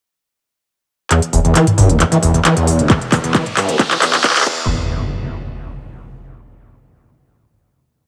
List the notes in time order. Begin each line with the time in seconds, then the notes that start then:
1.11 E2, clap, closed hi-hat, riser
1.22 closed hi-hat
1.33 E1 E2, open hi-hat
1.45 E1 E2, closed hi-hat
1.55 E3, clap, closed hi-hat
1.67 closed hi-hat, mid tom
1.78 E1 G2, mid tom, open hi-hat
1.89 E1 D2, closed hi-hat
2.00 E2, clap, closed hi-hat
2.12 E3, closed hi-hat
2.22 E1 E2, open hi-hat
2.34 E1 E2, closed hi-hat
2.45 E3, clap, closed hi-hat
2.56 E2, closed hi-hat
2.67 E1, open hi-hat
2.79 E1 D2, closed hi-hat
2.90 kick, clap, closed hi-hat
3.01 closed hi-hat
3.12 E1 E2, kick, clap, open hi-hat
3.24 E1 E2, closed hi-hat
3.34 E3, kick, clap, closed hi-hat
3.46 closed hi-hat, mid tom
3.57 E1 G2, clap, mid tom, open hi-hat
3.68 E1 D2, closed hi-hat
3.79 E2, kick, clap, closed hi-hat
3.91 E3, clap, closed hi-hat
4.02 E1 E2, clap, open hi-hat
4.13 E1 E2, clap, closed hi-hat
4.24 E3, kick, clap, closed hi-hat
4.30 clap
4.36 E2, clap, closed hi-hat
4.41 clap
4.47 E1 E2, kick, crash, impact